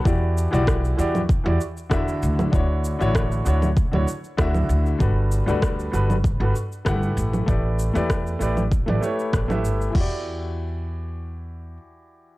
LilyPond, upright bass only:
\new Staff \with { instrumentName = "Upright bass" } { \clef bass \time 4/4 \key e \dorian \tempo 4 = 97 e,8. b,,8. e,8. e,16 r8 e,16 r16 d,16 r16 | d,8. a,,8. d,8. d,16 r8 d,16 r16 d,16 r16 | g,,8. d,8. g,,8. g,,16 r8 g,,16 r16 a,,16 r16 | a,,8. e,8. a,,8. a,,16 r8 a,,8 g,,16 r16 |
e,2. r4 | }